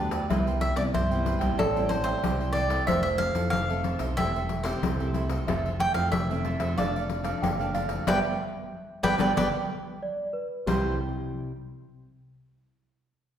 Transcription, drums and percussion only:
0.11 pandeiro medium
0.30 pandeiro medium
0.47 pandeiro soft
0.61 pandeiro medium
0.76 pandeiro medium
0.94 pandeiro medium
1.11 pandeiro soft
1.26 pandeiro medium
1.41 pandeiro medium
1.59 pandeiro medium
1.77 pandeiro soft
1.90 pandeiro medium
2.05 pandeiro medium
2.24 pandeiro medium
2.41 pandeiro soft
2.55 pandeiro medium
2.70 pandeiro medium
2.88 pandeiro medium
3.05 pandeiro soft
3.19 pandeiro medium
3.35 pandeiro medium
3.53 pandeiro medium
3.70 pandeiro soft
3.84 pandeiro medium
3.99 pandeiro medium
4.18 pandeiro medium
4.36 pandeiro soft
4.49 pandeiro medium
4.65 pandeiro medium
4.83 pandeiro medium
5.00 pandeiro soft
5.14 pandeiro medium
5.29 pandeiro medium
5.48 pandeiro medium
5.66 pandeiro soft
5.80 pandeiro soft
5.95 pandeiro medium
6.13 pandeiro medium
6.31 pandeiro soft
6.45 pandeiro medium
6.60 pandeiro medium
6.78 pandeiro medium
6.96 pandeiro soft
7.09 pandeiro medium
7.25 pandeiro medium
7.43 pandeiro medium
7.61 pandeiro soft
7.75 pandeiro medium
7.89 pandeiro medium
8.07 pandeiro loud
9.04 pandeiro loud
9.19 pandeiro medium
9.37 pandeiro medium
10.68 pandeiro loud

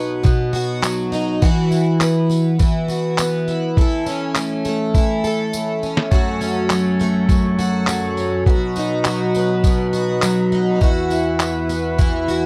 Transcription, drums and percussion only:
0.24 kick loud
0.24 tambourine soft
0.55 tambourine medium
0.83 clap loud
0.83 tambourine loud
1.13 tambourine medium
1.13 tambourine soft
1.42 kick loud
1.42 tambourine soft
1.72 tambourine medium
2.01 clap loud
2.01 tambourine medium
2.30 tambourine medium
2.60 kick loud
2.60 tambourine medium
2.89 tambourine medium
3.18 clap loud
3.18 tambourine loud
3.48 tambourine soft
3.48 tambourine medium
3.77 kick loud
4.06 tambourine medium
4.35 clap loud
4.35 tambourine medium
4.65 tambourine soft
4.65 tambourine medium
4.94 kick loud
4.94 tambourine medium
5.24 tambourine soft
5.53 tambourine loud
5.83 tambourine soft
5.97 snare medium
6.11 kick loud
6.11 tambourine soft
6.41 tambourine medium
6.70 clap loud
6.70 tambourine medium
6.99 tambourine medium
6.99 tambourine soft
7.29 kick loud
7.29 tambourine medium
7.59 tambourine medium
7.87 clap loud
7.87 tambourine medium
8.17 tambourine medium
8.17 tambourine soft
8.46 kick loud
8.76 tambourine medium
9.04 clap loud
9.04 tambourine medium
9.34 tambourine medium
9.64 kick loud
9.64 tambourine medium
9.93 tambourine medium
10.22 clap loud
10.22 tambourine loud
10.52 tambourine medium
10.81 kick loud
10.81 tambourine soft
11.11 tambourine medium
11.40 clap loud
11.40 tambourine medium
11.69 tambourine medium
11.99 kick loud
11.99 tambourine medium
12.28 tambourine medium

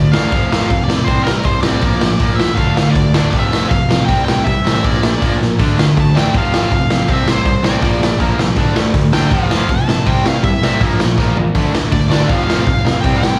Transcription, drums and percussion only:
0.13 snare loud
0.32 kick loud
0.32 open hi-hat medium
0.53 snare loud
0.70 kick loud
0.70 open hi-hat medium
0.90 snare medium
1.07 kick loud
1.07 open hi-hat medium
1.27 snare loud
1.43 kick loud
1.43 open hi-hat medium
1.63 snare loud
1.81 kick loud
1.81 open hi-hat medium
2.01 snare loud
2.20 kick loud
2.20 open hi-hat medium
2.40 snare loud
2.57 kick loud
2.57 open hi-hat medium
2.77 snare loud
2.95 kick loud
2.95 open hi-hat medium
3.14 snare loud
3.33 kick loud
3.33 open hi-hat medium
3.53 snare loud
3.71 kick loud
3.71 open hi-hat medium
3.91 snare loud
4.09 kick loud
4.09 open hi-hat medium
4.28 snare loud
4.47 kick loud
4.47 open hi-hat medium
4.67 snare loud
4.84 kick loud
4.84 open hi-hat medium
5.03 snare loud
5.22 kick loud
5.22 open hi-hat medium
5.42 snare medium
5.59 kick loud
5.59 open hi-hat medium
5.79 snare loud
5.97 kick loud
5.97 open hi-hat medium
6.17 snare loud
6.35 kick loud
6.35 open hi-hat medium
6.54 snare loud
6.72 kick loud
6.72 open hi-hat medium
6.90 snare loud
7.08 kick loud
7.08 open hi-hat soft
7.28 snare loud
7.46 kick loud
7.46 open hi-hat soft
7.64 snare loud
7.82 kick loud
7.82 open hi-hat medium
8.03 snare loud
8.20 kick loud
8.20 open hi-hat medium
8.39 snare medium
8.56 kick loud
8.56 open hi-hat medium
8.76 snare loud
8.94 kick loud
8.94 open hi-hat medium
9.13 snare loud
9.31 kick loud
9.31 open hi-hat medium
9.51 snare loud
9.69 kick loud
9.69 open hi-hat medium
9.89 snare medium
10.07 kick loud
10.07 open hi-hat medium
10.26 snare loud
10.44 kick loud
10.44 open hi-hat medium
10.63 snare loud
10.81 kick loud
10.81 open hi-hat medium
11.00 snare loud
11.18 kick loud
11.18 snare medium
11.37 floor tom medium
11.55 kick loud
11.55 open hi-hat medium
11.75 snare loud
11.92 kick loud
11.92 open hi-hat medium
12.12 snare loud
12.29 kick loud
12.29 open hi-hat medium
12.50 snare loud
12.67 kick loud
12.67 open hi-hat medium
12.87 snare medium
13.04 kick loud
13.04 open hi-hat medium
13.23 snare loud

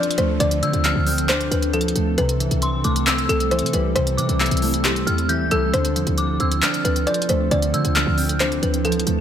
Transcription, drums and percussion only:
0.03 closed hi-hat medium
0.11 closed hi-hat medium
0.18 closed hi-hat medium
0.40 closed hi-hat medium
0.51 closed hi-hat medium
0.63 closed hi-hat medium
0.73 closed hi-hat medium
0.84 clap loud
0.84 closed hi-hat medium
1.07 open hi-hat medium
1.18 closed hi-hat medium
1.29 clap loud
1.29 closed hi-hat medium
1.41 closed hi-hat medium
1.52 closed hi-hat medium
1.63 closed hi-hat medium
1.73 closed hi-hat medium
1.81 closed hi-hat medium
1.88 closed hi-hat medium
1.96 closed hi-hat medium
2.18 closed hi-hat medium
2.29 closed hi-hat medium
2.40 closed hi-hat medium
2.51 closed hi-hat medium
2.62 closed hi-hat medium
2.84 closed hi-hat medium
2.96 closed hi-hat medium
3.07 clap loud
3.07 closed hi-hat medium
3.18 closed hi-hat medium
3.29 closed hi-hat medium
3.40 closed hi-hat medium
3.51 closed hi-hat medium
3.59 closed hi-hat medium
3.66 closed hi-hat medium
3.73 closed hi-hat medium
3.96 closed hi-hat medium
4.07 closed hi-hat medium
4.18 closed hi-hat medium
4.29 closed hi-hat medium
4.40 clap loud
4.40 closed hi-hat medium
4.46 closed hi-hat medium
4.51 closed hi-hat medium
4.57 closed hi-hat medium
4.62 open hi-hat medium
4.74 closed hi-hat medium
4.85 clap loud
4.85 closed hi-hat medium
4.96 closed hi-hat medium
5.07 closed hi-hat medium
5.18 closed hi-hat medium
5.29 closed hi-hat medium
5.51 closed hi-hat medium
5.74 closed hi-hat medium
5.85 closed hi-hat medium
5.96 closed hi-hat medium
6.07 closed hi-hat medium
6.18 closed hi-hat medium
6.40 closed hi-hat medium
6.52 closed hi-hat medium
6.62 clap loud
6.62 closed hi-hat medium
6.74 closed hi-hat medium
6.85 closed hi-hat medium
6.96 closed hi-hat medium
7.07 closed hi-hat medium
7.14 closed hi-hat medium
7.22 closed hi-hat medium
7.29 closed hi-hat medium
7.51 closed hi-hat medium
7.62 closed hi-hat medium
7.74 closed hi-hat medium
7.85 closed hi-hat medium
7.95 clap loud
7.95 closed hi-hat medium
8.18 open hi-hat medium
8.29 closed hi-hat medium
8.40 clap loud
8.40 closed hi-hat medium
8.52 closed hi-hat medium
8.63 closed hi-hat medium
8.74 closed hi-hat medium
8.85 closed hi-hat medium
8.92 closed hi-hat medium
9.00 closed hi-hat medium
9.07 closed hi-hat medium

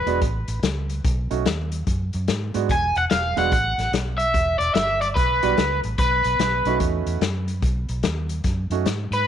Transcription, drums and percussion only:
0.07 closed hi-hat medium
0.22 kick loud
0.22 closed hi-hat medium
0.48 closed hi-hat medium
0.63 snare loud
0.63 closed hi-hat medium
0.90 closed hi-hat medium
1.04 kick loud
1.04 closed hi-hat medium
1.31 closed hi-hat soft
1.46 snare loud
1.46 closed hi-hat medium
1.72 closed hi-hat medium
1.87 kick loud
1.87 closed hi-hat medium
2.13 closed hi-hat medium
2.28 snare loud
2.28 closed hi-hat medium
2.54 closed hi-hat medium
2.69 kick loud
2.69 closed hi-hat medium
2.95 closed hi-hat soft
3.10 snare loud
3.10 closed hi-hat medium
3.37 snare soft
3.37 closed hi-hat soft
3.52 kick loud
3.52 closed hi-hat medium
3.79 snare soft
3.79 closed hi-hat medium
3.93 snare medium
3.93 closed hi-hat medium
4.19 closed hi-hat medium
4.34 kick loud
4.34 closed hi-hat medium
4.60 closed hi-hat medium
4.75 snare loud
4.75 closed hi-hat medium
5.01 closed hi-hat medium
5.17 kick loud
5.17 closed hi-hat medium
5.43 closed hi-hat medium
5.57 snare loud
5.57 closed hi-hat medium
5.83 closed hi-hat soft
5.98 kick loud
5.98 closed hi-hat medium
6.24 closed hi-hat medium
6.39 snare loud
6.39 closed hi-hat medium
6.65 closed hi-hat medium
6.80 kick loud
6.80 closed hi-hat medium
7.07 closed hi-hat medium
7.21 snare loud
7.21 closed hi-hat medium
7.48 closed hi-hat medium
7.62 kick loud
7.62 closed hi-hat medium
7.89 closed hi-hat medium
8.03 snare loud
8.03 closed hi-hat medium
8.29 closed hi-hat medium
8.44 kick loud
8.44 snare soft
8.44 closed hi-hat medium
8.71 closed hi-hat medium
8.86 snare loud
8.86 closed hi-hat medium
9.12 closed hi-hat medium

